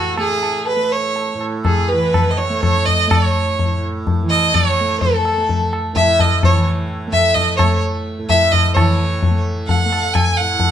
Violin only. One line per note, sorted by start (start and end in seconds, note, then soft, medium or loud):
0.00 0.17 F#4 medium
0.18 0.64 G#4 medium
0.68 0.94 B4 medium
0.92 1.41 C#5 medium
1.66 1.90 G#4 medium
1.89 2.32 B4 medium
2.31 2.39 D#5 medium
2.37 2.61 C#5 medium
2.62 2.87 C#5 medium
2.86 3.12 D#5 loud
3.10 3.82 C#5 medium
4.30 4.55 D#5 loud
4.54 5.00 C#5 medium
5.01 5.68 A4 medium
5.96 6.22 E5 loud
6.21 6.43 D#5 medium
6.44 6.65 C#5 medium
7.13 7.36 E5 loud
7.34 7.56 D#5 medium
7.56 7.80 C#5 medium
8.29 8.53 E5 loud
8.51 8.74 D#5 loud
8.74 9.40 C#5 medium
9.67 10.15 F#5 medium
10.14 10.38 G#5 medium
10.37 10.71 F#5 loud